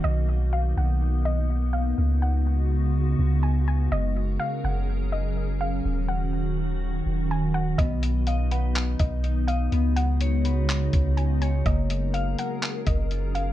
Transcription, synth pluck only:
X:1
M:4/4
L:1/8
Q:1/4=124
K:Blyd
V:1 name="Synth pluck"
d2 e f2 d2 e | z f3 z2 g g | d2 e f2 d2 e | z f3 z2 g f |
d2 e f2 d2 e | z f3 z2 g g | d2 e f2 d2 e |]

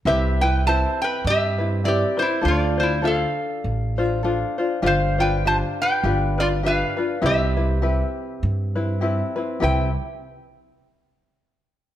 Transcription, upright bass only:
X:1
M:4/4
L:1/8
Q:"Swing" 1/4=100
K:C
V:1 name="Upright bass" clef=bass
C,,4 G,,4 | D,,4 A,,,4 | G,,,4 G,,,4 | C,,4 G,,4 |
C,, z6 z |]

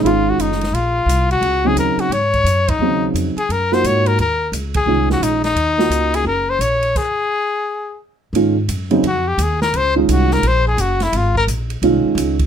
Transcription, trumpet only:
X:1
M:4/4
L:1/8
Q:"Swing" 1/4=173
K:Abmix
V:1 name="Trumpet"
F G E2 F3 G- | G A B G d3 E- | E z2 A B c d B | B2 z A2 G E E- |
E3 A B c d2 | A6 z2 | z4 G =G A B | c E G B c A G _F |
F B z6 |]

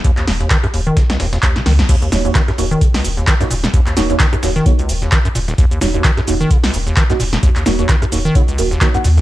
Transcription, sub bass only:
X:1
M:4/4
L:1/8
Q:"Swing 16ths" 1/4=130
K:Ebm
V:1 name="Sub bass" clef=bass
z E,,, z E,,, z E,,, z D,, | z E,,, z E,,, z E,,, z E,,, | z E,,, z E,,, z E,,, z E,,, | z E,,, z E,,, z E,,, z E,,, |
z E,,, z E,,, z E,,, z E,, |]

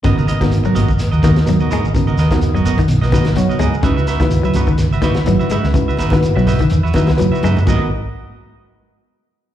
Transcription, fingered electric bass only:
X:1
M:4/4
L:1/16
Q:"Swing 16ths" 1/4=125
K:G#m
V:1 name="Fingered electric bass" clef=bass
G,,,3 G,,,3 G,,,3 D,,2 z D,, z2 G,,,- | G,,,2 D,,3 F,,,2 z B,,,2 z G,,, z2 C,, z | C,,3 C,,3 C,,3 G,,,2 z G,,, z2 C,,- | C,,2 G,,,3 B,,,2 z E,,2 z C,, z2 F,, z |
G,,,2 z12 z2 |]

